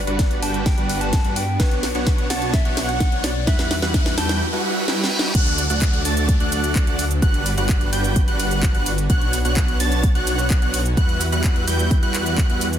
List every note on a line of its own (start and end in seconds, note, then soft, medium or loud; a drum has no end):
0.00 1.58 G3 medium
0.00 4.37 B3 medium
0.00 1.58 D4 medium
0.00 1.58 B4 medium
0.00 0.42 D5 loud
0.00 riser medium
0.07 0.40 G1 medium
0.07 0.40 G3 medium
0.07 0.40 D4 medium
0.07 0.40 F#4 medium
0.07 0.40 B4 medium
0.07 0.40 F#5 loud
0.07 0.40 F#6 loud
0.07 closed hi-hat soft
0.19 kick loud
0.19 snare medium
0.19 closed hi-hat medium
0.31 closed hi-hat soft
0.42 0.75 G1 loud
0.42 0.71 G3 loud
0.42 0.71 D4 medium
0.42 0.71 F#4 medium
0.42 0.71 B4 medium
0.42 0.71 G5 loud
0.42 0.64 A5 loud
0.42 0.71 G6 loud
0.42 open hi-hat loud
0.54 closed hi-hat soft
0.66 1.03 G5 loud
0.66 kick loud
0.66 snare medium
0.66 closed hi-hat medium
0.78 1.22 G1 loud
0.78 1.22 G3 loud
0.78 1.22 D4 medium
0.78 1.22 F#4 medium
0.78 1.22 B4 medium
0.78 1.22 F#5 loud
0.78 1.22 F#6 loud
0.78 closed hi-hat soft
0.89 open hi-hat loud
1.01 1.38 A5 loud
1.01 closed hi-hat soft
1.13 kick loud
1.13 snare medium
1.13 closed hi-hat medium
1.24 1.57 G2 medium
1.24 1.42 G3 medium
1.24 1.43 D4 medium
1.24 1.43 F#4 medium
1.24 1.43 B4 medium
1.24 1.43 F#5 loud
1.24 1.42 F#6 loud
1.24 closed hi-hat soft
1.36 1.59 G5 loud
1.36 open hi-hat loud
1.60 1.93 B1 medium
1.60 1.88 B3 loud
1.60 1.88 D4 medium
1.60 3.46 D4 medium
1.60 1.88 F#4 medium
1.60 2.26 B4 loud
1.60 1.88 C#5 loud
1.60 3.45 C#5 medium
1.60 1.88 F#5 loud
1.60 1.88 F#6 loud
1.60 kick loud
1.60 snare medium
1.60 closed hi-hat medium
1.71 closed hi-hat soft
1.83 snare medium
1.83 open hi-hat loud
1.95 2.28 B1 medium
1.95 2.27 B3 medium
1.95 2.27 D4 medium
1.95 2.27 F#4 medium
1.95 2.27 C#5 medium
1.95 2.27 F#5 loud
1.95 2.27 F#6 loud
1.95 closed hi-hat soft
2.07 kick loud
2.07 snare medium
2.07 closed hi-hat medium
2.18 closed hi-hat soft
2.30 2.63 B1 loud
2.30 2.59 B3 loud
2.30 2.59 D4 medium
2.30 2.59 F#4 medium
2.30 2.59 C#5 medium
2.30 2.55 F#5 loud
2.30 2.59 A5 loud
2.30 2.59 A6 loud
2.30 snare medium
2.30 open hi-hat loud
2.42 closed hi-hat soft
2.54 2.88 E5 loud
2.54 kick loud
2.54 snare medium
2.54 closed hi-hat medium
2.65 3.10 B1 loud
2.65 3.09 B3 medium
2.65 3.09 D4 medium
2.65 3.09 F#4 medium
2.65 3.09 C#5 medium
2.65 3.09 F#5 loud
2.65 3.09 F#6 loud
2.65 closed hi-hat soft
2.77 snare medium
2.77 open hi-hat loud
2.89 3.25 F#5 loud
2.89 closed hi-hat soft
3.00 kick loud
3.00 snare medium
3.00 closed hi-hat medium
3.12 3.45 B1 loud
3.12 3.30 B3 medium
3.12 3.30 D4 medium
3.12 3.30 F#4 medium
3.12 3.30 C#5 medium
3.12 3.30 F#5 loud
3.12 3.30 F#6 medium
3.12 closed hi-hat soft
3.24 3.49 D5 loud
3.24 snare medium
3.24 open hi-hat loud
3.47 3.76 G3 loud
3.47 4.40 G3 medium
3.47 3.76 E4 medium
3.47 4.40 E4 medium
3.47 3.76 F#4 medium
3.47 3.76 B4 medium
3.47 4.40 B4 medium
3.47 4.19 E5 loud
3.47 3.76 F#5 loud
3.47 3.76 F#6 loud
3.47 kick loud
3.47 snare medium
3.47 closed hi-hat medium
3.59 snare medium
3.59 closed hi-hat soft
3.71 snare medium
3.71 open hi-hat loud
3.82 4.15 E2 loud
3.82 4.15 G3 medium
3.82 4.15 E4 medium
3.82 4.15 F#4 medium
3.82 4.15 B4 medium
3.82 4.15 F#5 loud
3.82 4.15 F#6 loud
3.82 snare medium
3.82 closed hi-hat soft
3.94 kick loud
3.94 snare loud
3.94 closed hi-hat medium
4.06 snare medium
4.06 closed hi-hat soft
4.17 4.41 E2 loud
4.17 4.46 G3 loud
4.17 4.46 E4 medium
4.17 4.46 F#4 medium
4.17 4.46 B4 medium
4.17 4.46 G5 loud
4.17 4.41 A5 loud
4.17 4.41 G6 loud
4.17 snare loud
4.17 open hi-hat loud
4.29 snare medium
4.29 closed hi-hat soft
4.41 reverse cymbal medium
4.53 4.86 G3 loud
4.53 4.86 E4 medium
4.53 4.86 F#4 medium
4.53 4.86 B4 medium
4.53 4.86 F#5 loud
4.88 5.32 G3 loud
4.88 5.32 E4 medium
4.88 5.32 F#4 medium
4.88 5.32 B4 medium
4.88 5.32 G5 loud
4.88 snare medium
5.04 snare medium
5.19 snare medium
5.35 5.68 D2 medium
5.35 7.20 F#3 medium
5.35 5.63 A3 loud
5.35 7.20 A3 medium
5.35 5.63 D4 medium
5.35 10.93 D4 medium
5.35 5.63 F#4 medium
5.35 7.20 A4 medium
5.35 5.63 D5 medium
5.35 7.21 D5 medium
5.35 5.63 F#5 loud
5.35 5.63 F#6 loud
5.35 kick loud
5.35 closed hi-hat loud
5.35 crash loud
5.35 downlifter medium
5.35 shaker soft
5.47 closed hi-hat soft
5.58 open hi-hat loud
5.58 shaker medium
5.70 6.03 D2 loud
5.70 6.02 A3 medium
5.70 6.02 D4 medium
5.70 6.02 F#4 medium
5.70 6.02 D5 medium
5.70 6.02 F#5 loud
5.70 6.02 F#6 loud
5.70 closed hi-hat soft
5.70 shaker soft
5.82 kick loud
5.82 clap loud
5.82 closed hi-hat loud
5.82 shaker soft
5.94 closed hi-hat soft
6.05 6.38 D2 loud
6.05 6.34 A3 loud
6.05 6.34 D4 medium
6.05 6.34 F#4 medium
6.05 6.34 D5 medium
6.05 6.34 A5 loud
6.05 6.34 A6 loud
6.05 open hi-hat loud
6.05 shaker medium
6.17 closed hi-hat soft
6.17 shaker soft
6.29 kick loud
6.29 closed hi-hat medium
6.29 shaker soft
6.40 6.85 D2 loud
6.40 6.84 A3 loud
6.40 6.84 D4 medium
6.40 6.84 F#4 medium
6.40 6.84 D5 medium
6.40 6.84 F#5 loud
6.40 6.84 F#6 loud
6.40 closed hi-hat soft
6.52 open hi-hat loud
6.52 shaker medium
6.64 closed hi-hat soft
6.64 shaker soft
6.75 kick loud
6.75 clap loud
6.75 closed hi-hat loud
6.75 shaker soft
6.87 7.20 D2 medium
6.87 7.05 A3 loud
6.87 7.05 D4 medium
6.87 7.05 F#4 medium
6.87 7.05 D5 medium
6.87 7.05 F#5 loud
6.87 7.05 F#6 medium
6.87 closed hi-hat soft
6.99 open hi-hat loud
6.99 shaker medium
7.11 closed hi-hat soft
7.11 shaker soft
7.22 7.55 G1 medium
7.22 9.08 G3 medium
7.22 7.51 G3 loud
7.22 12.79 B3 medium
7.22 7.51 D4 medium
7.22 12.79 F#4 medium
7.22 7.51 F#4 medium
7.22 9.08 B4 medium
7.22 7.51 B4 medium
7.22 7.51 F#5 loud
7.22 7.51 F#6 loud
7.22 kick loud
7.22 closed hi-hat medium
7.22 shaker soft
7.34 closed hi-hat soft
7.46 open hi-hat loud
7.46 shaker medium
7.57 7.90 G1 medium
7.57 7.90 G3 medium
7.57 7.90 D4 medium
7.57 7.90 F#4 medium
7.57 7.90 B4 medium
7.57 7.90 F#5 loud
7.57 7.90 F#6 loud
7.57 closed hi-hat soft
7.57 shaker soft
7.69 kick loud
7.69 clap loud
7.69 closed hi-hat loud
7.69 shaker soft
7.81 closed hi-hat soft
7.93 8.25 G1 loud
7.93 8.21 G3 medium
7.93 8.21 D4 medium
7.93 8.21 F#4 medium
7.93 8.21 B4 medium
7.93 8.21 G5 loud
7.93 8.21 G6 loud
7.93 open hi-hat loud
7.93 shaker medium
8.04 closed hi-hat soft
8.04 shaker soft
8.16 kick loud
8.16 closed hi-hat medium
8.16 shaker soft
8.28 8.72 G1 loud
8.28 8.72 G3 medium
8.28 8.72 D4 medium
8.28 8.72 F#4 medium
8.28 8.72 B4 medium
8.28 8.72 F#5 loud
8.28 8.72 F#6 loud
8.28 closed hi-hat soft
8.40 open hi-hat loud
8.40 shaker medium
8.51 closed hi-hat soft
8.51 shaker soft
8.63 kick loud
8.63 clap loud
8.63 closed hi-hat medium
8.63 shaker soft
8.75 9.07 G1 medium
8.75 8.92 G3 medium
8.75 8.93 D4 medium
8.75 8.92 F#4 medium
8.75 8.92 B4 medium
8.75 8.92 F#5 loud
8.75 8.92 F#6 loud
8.75 closed hi-hat soft
8.86 open hi-hat loud
8.86 shaker medium
8.98 closed hi-hat soft
8.98 shaker soft
9.10 9.43 B1 medium
9.10 9.38 B3 loud
9.10 9.38 D4 medium
9.10 9.38 F#4 medium
9.10 9.38 C#5 loud
9.10 10.95 C#5 medium
9.10 9.38 F#5 loud
9.10 9.38 F#6 loud
9.10 kick loud
9.10 closed hi-hat loud
9.10 shaker soft
9.21 closed hi-hat soft
9.33 open hi-hat loud
9.33 shaker medium
9.45 9.78 B1 loud
9.45 9.77 B3 medium
9.45 9.77 D4 medium
9.45 9.77 F#4 medium
9.45 9.77 C#5 medium
9.45 9.77 F#5 loud
9.45 9.77 F#6 loud
9.45 closed hi-hat soft
9.45 shaker soft
9.57 kick loud
9.57 clap loud
9.57 closed hi-hat medium
9.57 shaker soft
9.68 closed hi-hat soft
9.80 10.13 B1 loud
9.80 10.09 B3 loud
9.80 10.09 D4 medium
9.80 10.09 F#4 medium
9.80 10.09 C#5 medium
9.80 10.09 A5 loud
9.80 10.09 A6 loud
9.80 open hi-hat loud
9.80 shaker medium
9.92 closed hi-hat soft
9.92 shaker soft
10.04 kick loud
10.04 closed hi-hat medium
10.04 shaker soft
10.15 10.60 B1 medium
10.15 10.59 B3 medium
10.15 10.59 D4 medium
10.15 10.59 F#4 medium
10.15 10.59 C#5 medium
10.15 10.59 F#5 loud
10.15 10.59 F#6 loud
10.15 closed hi-hat soft
10.27 open hi-hat loud
10.27 shaker medium
10.39 closed hi-hat soft
10.39 shaker soft
10.50 kick loud
10.50 clap loud
10.50 closed hi-hat medium
10.50 shaker soft
10.62 10.95 B1 medium
10.62 10.80 B3 loud
10.62 10.80 D4 medium
10.62 10.80 F#4 medium
10.62 10.80 C#5 medium
10.62 10.80 F#5 loud
10.62 10.80 F#6 loud
10.62 closed hi-hat soft
10.74 open hi-hat loud
10.74 shaker medium
10.86 closed hi-hat soft
10.86 shaker soft
10.97 11.26 G3 loud
10.97 12.79 G3 medium
10.97 11.26 E4 medium
10.97 12.79 E4 medium
10.97 11.26 F#4 medium
10.97 11.26 B4 medium
10.97 12.79 B4 medium
10.97 11.26 F#5 loud
10.97 11.26 F#6 loud
10.97 kick loud
10.97 closed hi-hat medium
10.97 shaker soft
11.09 closed hi-hat soft
11.21 open hi-hat loud
11.21 shaker medium
11.32 11.65 E2 loud
11.32 11.65 G3 medium
11.32 11.65 E4 medium
11.32 11.65 F#4 medium
11.32 11.65 B4 medium
11.32 11.65 F#5 loud
11.32 11.65 F#6 loud
11.32 closed hi-hat soft
11.32 shaker soft
11.44 kick loud
11.44 clap loud
11.44 closed hi-hat medium
11.44 shaker soft
11.56 closed hi-hat soft
11.67 12.00 E2 loud
11.67 11.96 G3 loud
11.67 11.96 E4 medium
11.67 11.96 F#4 medium
11.67 11.96 B4 medium
11.67 11.96 G5 loud
11.67 11.96 G6 loud
11.67 open hi-hat loud
11.67 shaker medium
11.79 closed hi-hat soft
11.79 shaker soft
11.91 kick loud
11.91 closed hi-hat medium
11.91 shaker soft
12.03 12.47 E2 loud
12.03 12.47 G3 loud
12.03 12.47 E4 medium
12.03 12.47 F#4 medium
12.03 12.47 B4 medium
12.03 12.47 F#5 loud
12.03 12.47 F#6 loud
12.03 closed hi-hat soft
12.14 clap medium
12.14 open hi-hat loud
12.14 shaker medium
12.26 closed hi-hat soft
12.26 shaker soft
12.38 kick loud
12.38 clap loud
12.38 open hi-hat medium
12.38 shaker soft
12.50 12.79 E2 loud
12.50 12.67 G3 medium
12.50 12.67 E4 medium
12.50 12.67 F#4 medium
12.50 12.67 B4 medium
12.50 12.67 F#5 loud
12.50 12.67 F#6 loud
12.50 closed hi-hat soft
12.61 open hi-hat loud
12.61 shaker medium
12.73 closed hi-hat soft
12.73 shaker soft